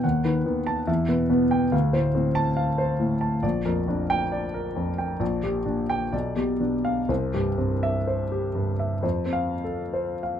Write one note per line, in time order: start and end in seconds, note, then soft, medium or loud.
0.04 0.86 D#2 soft
0.04 0.37 F#5 soft
0.25 0.44 D#3 soft
0.25 0.58 B4 soft
0.46 0.79 D#3 soft
0.46 0.80 B3 soft
0.67 0.88 A5 medium
0.87 1.70 E2 medium
0.87 1.22 E5 soft
1.09 1.28 B2 soft
1.09 1.43 B4 soft
1.30 1.64 B2 soft
1.30 1.64 B3 soft
1.51 1.72 G5 medium
1.72 3.39 D2 medium
1.72 2.06 F5 soft
1.93 2.13 A2 soft
1.93 2.27 C5 soft
2.15 2.48 A2 soft
2.15 2.48 C4 soft
2.35 2.69 A5 medium
2.57 2.91 F5 soft
2.78 3.13 C5 soft
2.99 3.35 A2 soft
3.21 3.43 A5 soft
3.43 5.16 A#1 soft
3.43 3.79 D5 soft
3.65 3.86 F2 soft
3.65 4.01 A#4 soft
3.88 4.24 F2 soft
3.88 4.24 D4 soft
4.10 4.45 G5 medium
4.32 4.67 D5 soft
4.54 4.89 A#4 soft
4.76 5.12 F2 soft
4.98 5.21 G5 soft
5.20 6.10 A#1 medium
5.20 5.57 D5 soft
5.43 5.64 A#2 soft
5.43 5.80 G4 soft
5.66 6.03 A#2 soft
5.66 6.03 D4 soft
5.90 6.13 G5 medium
6.12 7.06 B1 soft
6.12 6.51 D5 soft
6.36 6.59 B2 soft
6.36 6.75 G4 soft
6.60 6.99 B2 soft
6.60 6.99 D4 soft
6.85 7.09 F5 medium
7.09 8.99 C2 soft
7.09 7.48 C5 soft
7.34 7.56 G2 soft
7.34 7.73 G4 soft
7.58 7.97 G2 soft
7.58 7.97 C4 soft
7.83 8.22 E5 medium
8.07 8.46 C5 soft
8.32 8.71 G4 soft
8.55 8.94 G2 soft
8.79 9.03 E5 soft
9.03 10.40 F2 soft
9.03 9.52 C5 soft
9.26 9.63 C4 soft
9.33 9.82 F5 medium
9.64 10.12 A4 soft
9.93 10.40 C5 soft
10.23 10.40 F5 soft